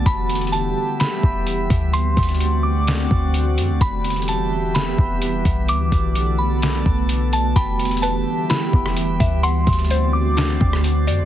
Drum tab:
HH |x---xxxxx-------x-------x---x---|x---xxxxx-------x-------x---x---|x---xxxxx-------x-------x---x---|x---x---x-------x-------x---x---|
SD |----------------o---------------|----------------o---------------|----------------o---------------|----------------o---------------|
BD |o-------------------o-------o---|----o---------------o-----------|o-------------------o-------o---|----o---------------o-----------|

HH |x---xxxxx-------x-------x---x---|x---xxxxx-------x-------x---x---|
SD |----------------o-----r---------|----------------o-----r---------|
BD |o-------------------o-------o---|----o---------------o-----------|